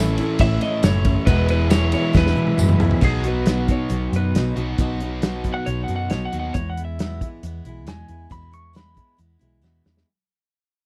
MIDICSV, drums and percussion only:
0, 0, Header, 1, 2, 480
1, 0, Start_track
1, 0, Key_signature, 4, "major"
1, 0, Tempo, 439239
1, 1400, Time_signature, 4, 2, 24, 8
1, 11863, End_track
2, 0, Start_track
2, 0, Title_t, "Drums"
2, 193, Note_on_c, 9, 51, 75
2, 302, Note_off_c, 9, 51, 0
2, 424, Note_on_c, 9, 51, 125
2, 434, Note_on_c, 9, 36, 105
2, 533, Note_off_c, 9, 51, 0
2, 543, Note_off_c, 9, 36, 0
2, 668, Note_on_c, 9, 51, 75
2, 777, Note_off_c, 9, 51, 0
2, 904, Note_on_c, 9, 51, 111
2, 913, Note_on_c, 9, 54, 84
2, 917, Note_on_c, 9, 38, 113
2, 1013, Note_off_c, 9, 51, 0
2, 1022, Note_off_c, 9, 54, 0
2, 1026, Note_off_c, 9, 38, 0
2, 1143, Note_on_c, 9, 51, 88
2, 1149, Note_on_c, 9, 36, 87
2, 1253, Note_off_c, 9, 51, 0
2, 1259, Note_off_c, 9, 36, 0
2, 1385, Note_on_c, 9, 51, 112
2, 1388, Note_on_c, 9, 36, 107
2, 1495, Note_off_c, 9, 51, 0
2, 1497, Note_off_c, 9, 36, 0
2, 1623, Note_on_c, 9, 51, 84
2, 1732, Note_off_c, 9, 51, 0
2, 1860, Note_on_c, 9, 51, 113
2, 1866, Note_on_c, 9, 54, 104
2, 1873, Note_on_c, 9, 38, 127
2, 1969, Note_off_c, 9, 51, 0
2, 1976, Note_off_c, 9, 54, 0
2, 1982, Note_off_c, 9, 38, 0
2, 2096, Note_on_c, 9, 51, 83
2, 2205, Note_off_c, 9, 51, 0
2, 2346, Note_on_c, 9, 36, 98
2, 2354, Note_on_c, 9, 38, 75
2, 2456, Note_off_c, 9, 36, 0
2, 2463, Note_off_c, 9, 38, 0
2, 2476, Note_on_c, 9, 38, 65
2, 2584, Note_on_c, 9, 48, 77
2, 2585, Note_off_c, 9, 38, 0
2, 2694, Note_off_c, 9, 48, 0
2, 2698, Note_on_c, 9, 48, 80
2, 2807, Note_off_c, 9, 48, 0
2, 2819, Note_on_c, 9, 47, 88
2, 2828, Note_on_c, 9, 54, 85
2, 2928, Note_off_c, 9, 47, 0
2, 2937, Note_off_c, 9, 54, 0
2, 2937, Note_on_c, 9, 45, 90
2, 3046, Note_off_c, 9, 45, 0
2, 3059, Note_on_c, 9, 43, 114
2, 3168, Note_off_c, 9, 43, 0
2, 3178, Note_on_c, 9, 43, 102
2, 3288, Note_off_c, 9, 43, 0
2, 3290, Note_on_c, 9, 49, 84
2, 3303, Note_on_c, 9, 36, 98
2, 3399, Note_off_c, 9, 49, 0
2, 3412, Note_off_c, 9, 36, 0
2, 3538, Note_on_c, 9, 42, 57
2, 3647, Note_off_c, 9, 42, 0
2, 3778, Note_on_c, 9, 42, 87
2, 3791, Note_on_c, 9, 38, 96
2, 3887, Note_off_c, 9, 42, 0
2, 3900, Note_off_c, 9, 38, 0
2, 4025, Note_on_c, 9, 42, 51
2, 4028, Note_on_c, 9, 36, 73
2, 4134, Note_off_c, 9, 42, 0
2, 4137, Note_off_c, 9, 36, 0
2, 4259, Note_on_c, 9, 42, 81
2, 4368, Note_off_c, 9, 42, 0
2, 4515, Note_on_c, 9, 42, 55
2, 4625, Note_off_c, 9, 42, 0
2, 4753, Note_on_c, 9, 42, 72
2, 4766, Note_on_c, 9, 38, 101
2, 4863, Note_off_c, 9, 42, 0
2, 4876, Note_off_c, 9, 38, 0
2, 4990, Note_on_c, 9, 42, 50
2, 5099, Note_off_c, 9, 42, 0
2, 5225, Note_on_c, 9, 42, 71
2, 5230, Note_on_c, 9, 36, 105
2, 5334, Note_off_c, 9, 42, 0
2, 5340, Note_off_c, 9, 36, 0
2, 5468, Note_on_c, 9, 42, 51
2, 5577, Note_off_c, 9, 42, 0
2, 5705, Note_on_c, 9, 42, 76
2, 5718, Note_on_c, 9, 38, 111
2, 5814, Note_off_c, 9, 42, 0
2, 5827, Note_off_c, 9, 38, 0
2, 5946, Note_on_c, 9, 42, 51
2, 5953, Note_on_c, 9, 36, 69
2, 6055, Note_off_c, 9, 42, 0
2, 6062, Note_off_c, 9, 36, 0
2, 6191, Note_on_c, 9, 42, 77
2, 6301, Note_off_c, 9, 42, 0
2, 6428, Note_on_c, 9, 42, 54
2, 6537, Note_off_c, 9, 42, 0
2, 6664, Note_on_c, 9, 42, 76
2, 6677, Note_on_c, 9, 38, 100
2, 6773, Note_off_c, 9, 42, 0
2, 6786, Note_off_c, 9, 38, 0
2, 6914, Note_on_c, 9, 42, 59
2, 7023, Note_off_c, 9, 42, 0
2, 7148, Note_on_c, 9, 42, 84
2, 7157, Note_on_c, 9, 36, 100
2, 7257, Note_off_c, 9, 42, 0
2, 7266, Note_off_c, 9, 36, 0
2, 7403, Note_on_c, 9, 42, 61
2, 7513, Note_off_c, 9, 42, 0
2, 7640, Note_on_c, 9, 42, 84
2, 7653, Note_on_c, 9, 38, 107
2, 7750, Note_off_c, 9, 42, 0
2, 7763, Note_off_c, 9, 38, 0
2, 7881, Note_on_c, 9, 36, 73
2, 7886, Note_on_c, 9, 42, 50
2, 7990, Note_off_c, 9, 36, 0
2, 7995, Note_off_c, 9, 42, 0
2, 8122, Note_on_c, 9, 42, 82
2, 8231, Note_off_c, 9, 42, 0
2, 8361, Note_on_c, 9, 42, 55
2, 8470, Note_off_c, 9, 42, 0
2, 8596, Note_on_c, 9, 42, 71
2, 8609, Note_on_c, 9, 38, 95
2, 8705, Note_off_c, 9, 42, 0
2, 8718, Note_off_c, 9, 38, 0
2, 8835, Note_on_c, 9, 42, 52
2, 8944, Note_off_c, 9, 42, 0
2, 9080, Note_on_c, 9, 36, 94
2, 9084, Note_on_c, 9, 42, 65
2, 9189, Note_off_c, 9, 36, 0
2, 9193, Note_off_c, 9, 42, 0
2, 9325, Note_on_c, 9, 42, 49
2, 9435, Note_off_c, 9, 42, 0
2, 9563, Note_on_c, 9, 42, 70
2, 9576, Note_on_c, 9, 38, 100
2, 9672, Note_off_c, 9, 42, 0
2, 9686, Note_off_c, 9, 38, 0
2, 9802, Note_on_c, 9, 36, 65
2, 9803, Note_on_c, 9, 42, 45
2, 9911, Note_off_c, 9, 36, 0
2, 9912, Note_off_c, 9, 42, 0
2, 10038, Note_on_c, 9, 42, 76
2, 10148, Note_off_c, 9, 42, 0
2, 10282, Note_on_c, 9, 42, 54
2, 10392, Note_off_c, 9, 42, 0
2, 10536, Note_on_c, 9, 38, 44
2, 10646, Note_off_c, 9, 38, 0
2, 10775, Note_on_c, 9, 38, 70
2, 10884, Note_off_c, 9, 38, 0
2, 10898, Note_on_c, 9, 38, 58
2, 11008, Note_off_c, 9, 38, 0
2, 11863, End_track
0, 0, End_of_file